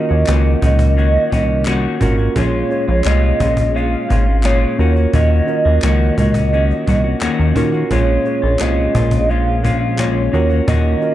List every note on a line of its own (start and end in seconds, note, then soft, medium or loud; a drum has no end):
0.00 0.10 A#3 medium
0.00 2.00 C#4 medium
0.00 2.01 F4 medium
0.00 2.01 F#4 medium
0.00 2.02 A#4 medium
0.00 0.59 D#5 loud
0.09 0.24 D#2 medium
0.09 0.26 A#3 soft
0.09 0.27 C#4 soft
0.09 0.27 F#4 medium
0.27 0.56 C#2 medium
0.27 0.60 D#3 medium
0.27 0.61 A#3 medium
0.27 0.62 C#4 medium
0.27 0.62 F#4 medium
0.27 cajon slap loud
0.27 clap medium
0.61 1.18 C#2 loud
0.61 0.95 D#3 medium
0.61 0.96 A#3 medium
0.61 0.96 C#4 medium
0.61 0.97 F#4 medium
0.61 1.98 D#5 loud
0.61 cajon bass loud
0.79 cajon bass medium
0.96 1.29 D#3 medium
0.96 1.30 A#3 medium
0.96 1.31 C#4 medium
0.96 1.32 F#4 medium
0.96 cajon slap medium
1.30 1.88 C2 medium
1.30 1.64 D#3 medium
1.30 1.65 A#3 medium
1.30 1.65 C#4 medium
1.30 1.66 F#4 medium
1.30 cajon bass medium
1.65 1.99 D#3 medium
1.65 2.00 A#3 medium
1.65 2.00 C#4 medium
1.65 2.01 F#4 loud
1.65 cajon slap loud
1.65 clap medium
2.00 2.29 G#1 medium
2.00 2.18 D#3 medium
2.00 2.18 A#3 medium
2.00 2.30 C#4 medium
2.00 2.18 C#4 medium
2.00 2.31 F4 medium
2.00 2.31 F#4 medium
2.00 2.16 F#4 medium
2.00 2.32 A#4 loud
2.00 cajon bass medium
2.17 2.35 A#3 soft
2.17 2.36 C#4 medium
2.17 2.35 F#4 medium
2.17 cajon slap soft
2.35 2.64 A#1 loud
2.35 2.88 A#2 medium
2.35 2.88 G#3 medium
2.35 2.65 C#4 medium
2.35 2.88 C#4 medium
2.35 2.65 F4 medium
2.35 2.86 F4 medium
2.35 2.66 G#4 medium
2.35 2.66 C#5 medium
2.35 3.08 C#5 medium
2.35 cajon bass loud
2.69 3.89 C#4 medium
2.69 3.90 F4 medium
2.69 3.90 G#4 medium
2.69 3.91 C#5 medium
2.69 cajon slap soft
2.87 3.02 A#1 loud
2.87 3.05 G#3 soft
2.87 3.05 C#4 soft
2.87 3.05 F4 medium
3.04 3.33 C2 medium
3.04 3.38 A#2 medium
3.04 3.39 G#3 medium
3.04 3.40 C#4 medium
3.04 3.41 F4 medium
3.04 3.78 D#5 loud
3.04 cajon slap loud
3.04 clap medium
3.39 3.96 A#1 loud
3.39 3.73 A#2 medium
3.39 3.73 G#3 medium
3.39 3.75 C#4 medium
3.39 3.75 F4 medium
3.39 cajon bass loud
3.57 cajon bass medium
3.74 4.07 A#2 medium
3.74 4.09 G#3 medium
3.74 4.09 C#4 medium
3.74 4.10 F4 medium
3.74 4.47 F5 loud
3.74 cajon slap medium
4.09 4.65 G#1 medium
4.09 4.26 A#2 medium
4.09 4.27 G#3 medium
4.09 4.27 C#4 medium
4.09 4.25 F4 medium
4.09 cajon bass medium
4.26 4.43 G#3 soft
4.26 4.44 C#4 soft
4.26 4.44 F4 soft
4.43 4.79 A#2 medium
4.43 4.79 G#3 medium
4.43 4.79 C#4 medium
4.43 4.80 F4 medium
4.43 5.14 C#5 loud
4.43 cajon slap loud
4.43 clap medium
4.77 5.07 D#2 medium
4.77 4.96 D#3 medium
4.77 4.96 A#3 medium
4.77 5.38 C#4 medium
4.77 4.96 C#4 medium
4.77 5.38 F4 medium
4.77 5.39 F#4 medium
4.77 4.95 F#4 medium
4.77 5.39 A#4 medium
4.77 cajon slap soft
4.96 5.13 A#3 medium
4.96 5.13 C#4 soft
4.96 5.13 F#4 medium
4.96 cajon slap soft
5.13 5.41 D#2 loud
5.13 5.65 D#3 medium
5.13 5.66 A#3 medium
5.13 5.65 C#4 medium
5.13 5.64 F#4 medium
5.13 6.14 D#5 loud
5.13 cajon bass loud
5.46 6.67 C#4 medium
5.46 6.67 F4 medium
5.46 6.67 F#4 medium
5.46 6.68 A#4 medium
5.46 cajon slap soft
5.65 5.79 D#2 loud
5.65 5.82 A#3 soft
5.65 5.83 C#4 soft
5.65 5.82 F#4 medium
5.82 6.11 C#2 loud
5.82 6.16 D#3 medium
5.82 6.17 A#3 medium
5.82 6.18 C#4 medium
5.82 6.18 F#4 medium
5.82 cajon slap loud
5.82 clap medium
6.17 6.73 C#2 medium
6.17 6.35 D#3 medium
6.17 6.35 A#3 medium
6.17 6.35 C#4 medium
6.17 6.34 F#4 medium
6.17 7.53 D#5 medium
6.17 cajon bass loud
6.34 6.52 A#3 soft
6.34 6.53 C#4 medium
6.34 6.52 F#4 medium
6.34 cajon bass loud
6.52 6.85 D#3 medium
6.52 6.86 A#3 medium
6.52 6.87 C#4 medium
6.52 6.88 F#4 medium
6.52 cajon slap medium
6.71 cajon slap soft
6.86 7.15 C2 loud
6.86 7.04 D#3 medium
6.86 7.04 A#3 medium
6.86 7.04 C#4 medium
6.86 7.03 F#4 medium
6.86 cajon bass medium
7.04 7.21 A#3 soft
7.04 7.21 C#4 medium
7.04 7.21 F#4 medium
7.21 7.29 D#2 soft
7.21 7.54 D#3 medium
7.21 7.55 A#3 medium
7.21 7.56 C#4 medium
7.21 7.56 F#4 loud
7.21 cajon slap loud
7.21 clap medium
7.39 7.53 D#2 medium
7.55 7.73 D#3 medium
7.55 7.84 D#3 medium
7.55 7.73 A#3 medium
7.55 7.85 C#4 medium
7.55 7.72 C#4 medium
7.55 7.86 F4 medium
7.55 7.86 F#4 medium
7.55 7.71 F#4 medium
7.55 7.86 A#4 loud
7.55 cajon bass medium
7.72 7.91 A#3 soft
7.72 7.91 C#4 medium
7.72 7.90 F#4 medium
7.72 cajon slap soft
7.89 8.18 A#1 loud
7.89 8.43 A#2 medium
7.89 8.43 G#3 medium
7.89 8.20 C#4 medium
7.89 8.42 C#4 medium
7.89 8.20 F4 medium
7.89 8.41 F4 medium
7.89 8.21 G#4 medium
7.89 8.21 C#5 medium
7.89 8.62 C#5 medium
7.89 cajon bass loud
8.24 9.44 C#4 medium
8.24 9.45 F4 medium
8.24 9.45 G#4 medium
8.24 9.45 C#5 medium
8.24 cajon slap soft
8.42 8.57 A#1 medium
8.42 8.58 G#3 soft
8.42 8.59 C#4 soft
8.42 8.59 F4 medium
8.59 8.88 C2 medium
8.59 8.92 A#2 medium
8.59 8.93 G#3 medium
8.59 8.94 C#4 medium
8.59 8.95 F4 medium
8.59 9.31 D#5 loud
8.59 cajon slap loud
8.59 clap medium
8.93 10.29 A#1 loud
8.93 9.27 A#2 medium
8.93 9.28 G#3 medium
8.93 9.29 C#4 medium
8.93 9.30 F4 medium
8.93 cajon bass loud
9.11 cajon bass medium
9.28 9.61 A#2 medium
9.28 9.62 G#3 medium
9.28 9.63 C#4 medium
9.28 9.64 F4 medium
9.28 10.00 F5 loud
9.28 cajon slap medium
9.62 9.97 A#2 medium
9.62 9.97 G#3 medium
9.62 9.98 C#4 medium
9.62 9.98 F4 medium
9.62 cajon bass medium
9.98 10.33 A#2 medium
9.98 10.33 G#3 medium
9.98 10.33 C#4 medium
9.98 10.34 F4 medium
9.98 10.67 C#5 loud
9.98 cajon slap loud
9.98 clap medium
10.32 10.61 D#2 loud
10.32 10.50 D#3 medium
10.32 10.50 A#3 medium
10.32 10.93 C#4 medium
10.32 10.50 C#4 medium
10.32 10.93 F4 medium
10.32 10.93 F#4 medium
10.32 10.48 F#4 medium
10.32 10.94 A#4 medium
10.32 cajon slap soft
10.49 10.67 A#3 soft
10.49 10.68 C#4 soft
10.49 10.67 F#4 medium
10.49 cajon slap soft
10.68 10.96 D#2 loud
10.68 11.14 D#3 medium
10.68 11.14 A#3 medium
10.68 11.14 C#4 medium
10.68 11.14 F#4 medium
10.68 11.14 D#5 loud
10.68 cajon bass loud
11.01 11.14 C#4 medium
11.01 11.14 F4 medium
11.01 11.14 F#4 medium
11.01 11.14 A#4 medium
11.01 cajon slap soft